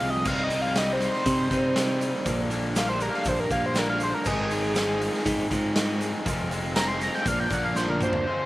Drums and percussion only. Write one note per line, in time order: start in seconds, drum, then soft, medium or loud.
0.00 open hi-hat medium
0.25 kick loud
0.25 crash medium
0.25 shaker medium
0.50 open hi-hat medium
0.50 shaker medium
0.76 snare loud
0.76 open hi-hat medium
0.76 shaker loud
1.01 snare soft
1.01 open hi-hat medium
1.01 shaker medium
1.13 snare soft
1.26 kick loud
1.26 open hi-hat medium
1.26 shaker medium
1.51 kick medium
1.51 open hi-hat medium
1.51 shaker medium
1.76 snare loud
1.76 open hi-hat medium
1.76 shaker loud
2.01 open hi-hat medium
2.01 shaker medium
2.26 kick loud
2.26 open hi-hat medium
2.26 shaker loud
2.51 open hi-hat soft
2.51 shaker medium
2.76 snare loud
2.76 open hi-hat medium
2.76 shaker loud
3.00 open hi-hat soft
3.00 shaker medium
3.14 snare soft
3.25 kick loud
3.25 open hi-hat medium
3.25 shaker loud
3.51 kick medium
3.51 open hi-hat medium
3.51 shaker medium
3.75 snare loud
3.75 open hi-hat medium
3.75 shaker medium
4.00 open hi-hat medium
4.00 shaker medium
4.25 kick loud
4.25 crash medium
4.25 shaker medium
4.50 open hi-hat medium
4.50 shaker medium
4.75 snare loud
4.75 open hi-hat medium
4.75 shaker medium
5.02 open hi-hat medium
5.02 shaker medium
5.14 snare soft
5.26 kick loud
5.26 open hi-hat medium
5.26 shaker medium
5.51 kick medium
5.51 open hi-hat medium
5.51 shaker medium
5.76 snare loud
5.76 open hi-hat medium
5.76 shaker medium
6.01 open hi-hat medium
6.01 shaker medium
6.26 kick loud
6.26 open hi-hat medium
6.26 shaker loud
6.51 open hi-hat medium
6.51 shaker medium
6.76 snare loud
6.76 open hi-hat medium
6.76 shaker loud
7.01 snare soft
7.01 open hi-hat medium
7.01 shaker medium
7.14 snare soft
7.26 kick loud
7.26 open hi-hat medium
7.26 shaker loud
7.50 kick medium
7.50 open hi-hat medium
7.50 shaker medium
7.75 snare medium
7.75 shaker loud
7.88 high tom medium
8.01 mid tom medium
8.01 shaker medium
8.13 floor tom medium